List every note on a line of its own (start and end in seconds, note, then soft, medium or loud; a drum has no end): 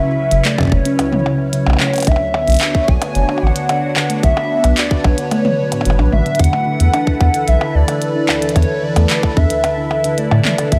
0.00 2.03 F#3 medium
0.00 2.03 C#4 medium
0.00 2.03 E4 medium
0.00 2.03 B4 medium
0.00 0.44 E5 loud
0.04 0.17 C#3 loud
0.31 0.40 F#1 loud
0.31 0.44 C#3 loud
0.31 closed hi-hat medium
0.45 0.53 A3 medium
0.45 0.73 D5 loud
0.45 clap loud
0.45 closed hi-hat medium
0.58 0.67 C#3 loud
0.58 kick loud
0.58 percussion blips medium
0.61 kick medium
0.63 kick medium
0.65 kick medium
0.67 kick soft
0.70 0.81 F#1 loud
0.70 0.80 C#3 medium
0.70 kick soft
0.72 1.53 C#5 loud
0.72 kick loud
0.85 0.98 C#4 medium
0.85 closed hi-hat medium
0.99 1.07 C#2 loud
0.99 closed hi-hat medium
0.99 percussion blips medium
1.12 1.21 C#3 medium
1.12 mid tom medium
1.26 1.38 C#3 loud
1.26 percussion blips medium
1.39 1.44 C#3 medium
1.53 1.66 C#3 loud
1.53 2.09 C#5 loud
1.53 closed hi-hat medium
1.66 1.75 B1 medium
1.66 1.75 A3 medium
1.66 percussion blips medium
1.70 percussion blips medium
1.73 percussion blips medium
1.77 clap loud
1.77 percussion blips soft
1.80 1.88 C#3 loud
1.80 percussion blips soft
1.83 percussion blips soft
1.87 percussion blips soft
1.90 closed hi-hat soft
1.90 percussion blips soft
1.94 2.02 C#3 medium
1.94 closed hi-hat soft
1.94 percussion blips soft
1.98 closed hi-hat soft
1.98 percussion blips soft
2.00 closed hi-hat soft
2.03 closed hi-hat medium
2.03 percussion blips soft
2.05 2.16 B1 loud
2.05 closed hi-hat medium
2.07 6.36 B3 medium
2.07 6.35 D4 medium
2.07 2.20 D4 medium
2.07 6.35 F#4 medium
2.07 4.21 C#5 medium
2.07 2.90 E5 loud
2.07 kick loud
2.07 closed hi-hat medium
2.07 percussion blips soft
2.12 percussion blips soft
2.16 percussion blips soft
2.21 2.29 D2 loud
2.34 2.42 D3 medium
2.34 percussion blips medium
2.48 2.57 B1 loud
2.48 2.60 D3 loud
2.48 closed hi-hat soft
2.50 closed hi-hat soft
2.52 closed hi-hat soft
2.54 closed hi-hat soft
2.57 closed hi-hat medium
2.59 clap loud
2.59 closed hi-hat medium
2.61 2.66 D3 medium
2.61 closed hi-hat medium
2.61 percussion blips medium
2.75 2.87 D3 loud
2.75 kick loud
2.88 2.97 B1 loud
2.88 2.97 A3 medium
2.88 3.44 G#5 loud
2.88 kick loud
3.02 3.10 D3 loud
3.02 closed hi-hat medium
3.02 percussion blips medium
3.15 3.24 F#1 medium
3.15 3.24 D3 medium
3.15 closed hi-hat medium
3.29 3.41 D4 medium
3.29 percussion blips soft
3.38 percussion blips soft
3.42 3.51 A1 medium
3.42 3.51 D2 loud
3.42 4.23 F#5 loud
3.47 percussion blips soft
3.56 3.64 D3 medium
3.56 closed hi-hat medium
3.69 3.82 D3 loud
3.69 closed hi-hat medium
3.69 percussion blips medium
3.83 3.88 D3 medium
3.96 4.09 D3 loud
3.96 clap loud
3.96 percussion blips medium
4.10 4.18 A3 medium
4.10 closed hi-hat medium
4.23 4.32 B1 loud
4.23 4.32 D3 loud
4.23 6.37 B4 medium
4.23 4.79 E5 loud
4.23 kick loud
4.23 closed hi-hat medium
4.37 4.45 D3 medium
4.37 percussion blips medium
4.50 4.63 D4 medium
4.64 4.73 B1 loud
4.64 4.72 D2 loud
4.64 closed hi-hat medium
4.64 percussion blips soft
4.77 4.86 D3 medium
4.77 5.06 D5 loud
4.77 clap loud
4.77 closed hi-hat medium
4.91 5.03 D3 loud
4.91 kick loud
5.04 5.13 B1 loud
5.04 5.09 D3 medium
5.04 6.12 C#5 loud
5.04 kick loud
5.04 percussion blips medium
5.18 5.30 D3 loud
5.18 closed hi-hat medium
5.31 5.40 A3 medium
5.31 closed hi-hat medium
5.31 percussion blips soft
5.45 5.53 D3 loud
5.45 mid tom medium
5.58 5.71 F#3 medium
5.72 5.80 A2 medium
5.72 closed hi-hat medium
5.72 percussion blips soft
5.81 percussion blips soft
5.85 6.00 F#1 medium
5.85 5.98 F#3 loud
5.85 closed hi-hat medium
5.90 percussion blips medium
5.99 6.08 B1 loud
5.99 6.07 D4 medium
5.99 percussion blips soft
6.12 6.21 A1 medium
6.12 6.21 D3 medium
6.12 6.41 E5 loud
6.12 mid tom medium
6.26 6.38 D3 medium
6.26 closed hi-hat soft
6.35 closed hi-hat soft
6.39 6.48 E2 loud
6.39 6.52 D3 loud
6.39 10.68 E3 medium
6.39 10.79 E4 medium
6.39 10.68 A4 medium
6.39 10.68 B4 medium
6.39 7.49 F#5 loud
6.39 kick loud
6.39 closed hi-hat medium
6.44 closed hi-hat medium
6.53 6.61 A3 medium
6.53 percussion blips medium
6.67 6.75 D3 loud
6.80 6.89 E2 loud
6.80 closed hi-hat medium
6.94 7.06 D4 medium
6.94 closed hi-hat medium
6.94 percussion blips medium
7.07 7.15 D2 loud
7.07 kick loud
7.21 7.29 E2 loud
7.21 7.29 D3 medium
7.21 kick loud
7.21 percussion blips soft
7.34 7.46 D3 loud
7.34 closed hi-hat medium
7.48 7.57 B1 medium
7.48 7.53 D3 medium
7.48 7.76 E5 loud
7.48 closed hi-hat medium
7.61 7.74 D3 loud
7.61 percussion blips medium
7.75 7.84 D2 medium
7.75 7.83 A3 medium
7.75 8.55 D5 loud
7.88 7.96 D3 loud
7.88 closed hi-hat medium
7.88 percussion blips medium
8.02 8.10 D3 medium
8.02 closed hi-hat medium
8.15 8.28 D4 medium
8.29 8.37 D2 loud
8.29 clap loud
8.29 percussion blips medium
8.42 8.51 D3 medium
8.42 closed hi-hat medium
8.49 closed hi-hat soft
8.56 8.65 E2 loud
8.56 8.68 D3 loud
8.56 8.84 C#5 loud
8.56 kick loud
8.56 closed hi-hat medium
8.56 percussion blips medium
8.62 closed hi-hat soft
8.83 8.95 D3 loud
8.83 9.38 D5 loud
8.96 9.05 E2 loud
8.96 9.05 A3 medium
8.96 closed hi-hat medium
8.96 percussion blips medium
9.10 9.18 D3 loud
9.10 clap loud
9.10 closed hi-hat medium
9.23 9.32 D3 medium
9.23 kick loud
9.23 percussion blips medium
9.37 9.46 E2 loud
9.37 9.49 D4 medium
9.37 10.19 E5 loud
9.37 kick loud
9.50 9.59 D2 loud
9.50 closed hi-hat medium
9.64 9.72 D3 medium
9.64 closed hi-hat soft
9.64 percussion blips medium
9.77 9.90 D3 loud
9.91 9.96 D3 medium
9.91 percussion blips medium
10.04 10.17 D3 loud
10.04 closed hi-hat medium
10.18 10.26 A3 medium
10.18 10.71 D5 medium
10.18 closed hi-hat medium
10.31 10.40 A2 medium
10.31 10.40 D3 loud
10.31 percussion blips medium
10.45 10.53 D3 medium
10.45 clap loud
10.45 mid tom medium
10.58 10.71 D4 medium
10.58 closed hi-hat medium
10.58 percussion blips medium
10.72 10.79 D2 loud
10.72 10.79 D3 medium
10.72 10.79 D4 medium
10.72 10.79 F#4 medium
10.72 10.79 E5 loud
10.72 kick loud
10.72 closed hi-hat medium